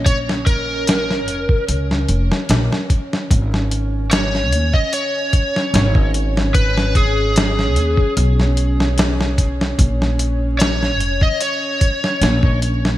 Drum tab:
HH |x-x-x-x-x-x-x-x-|x-x-x-x-x-x-x-x-|x-x-x-x-x-x-x-x-|x-x-x-x-x-x-x-x-|
SD |-o--oo---o-ooo-o|-o--oo-----oo--o|-o--oo---o-ooo-o|-o--oo-----oo--o|
BD |o-o----o------o-|o------o--o--o--|o-o----o------o-|o------o--o--o--|